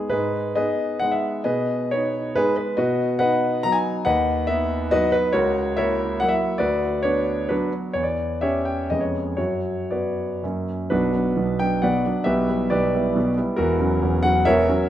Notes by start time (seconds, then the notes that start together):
0.10 G#2 D#4 G#4 B4
0.55 B3 D#4 G#4 B4 D#5
1.00 G#3 B3 D#4 F#5
1.12 E5
1.44 B2 G#4 B4 D#5
1.91 B3 D#4 C#5
2.36 G#3 B3 D#4 G#4 B4
2.57 B4
2.77 B2 F#4 B4 D#5
3.19 B3 D#4 B4 D#5 F#5
3.63 F#3 B3 D#4 A#5
3.72 G#5
4.05 D#2 B4 D#5 F#5
4.47 B3 D#4 E5
4.91 F#3 B3 D#4 F#4 B4 D#5
5.12 B4
5.33 C#2 F#4 A#4 C#5
5.77 A#3 E4 A#4 C#5 E5
6.20 F#3 A#3 E4 F#5
6.29 E5
6.58 D2 F#4 B4 D5
7.03 B3 D4 C#5
7.49 F#3 B3 D4 F#4 B4
7.93 E2 C#5
8.03 D5
8.41 C#4 G4 C#5 E5
8.65 G5
8.90 F2 G#3 B3 C#4 D#5
9.01 C#5
9.37 F#2 F#4 C#5
9.91 B3 F#4 B4 D5
10.43 F#2 F#3 A#3 C#4
10.90 B1 B2 D4 F#4 B4
11.13 F#3 B3 D4
11.37 B1 B2
11.59 F#3 B3 D4 G5
11.82 B1 B2 B4 D5 F#5
12.06 F#3 B3 D4
12.24 B1 B2 G4 B4 E5
12.49 G3 B3 E4
12.70 B1 B2 G4 B4 D5
12.95 G3 B3 E4
13.15 B1 B2
13.37 G3 B3 E4
13.56 E1 E2 E4 F#4 A#4
13.80 F#3 C#4 F#4
14.02 E1 E2
14.23 F#3 C#4 F#4 F#5
14.45 E1 E2 A#4 C#5 E5
14.69 F#3 C#4 F#4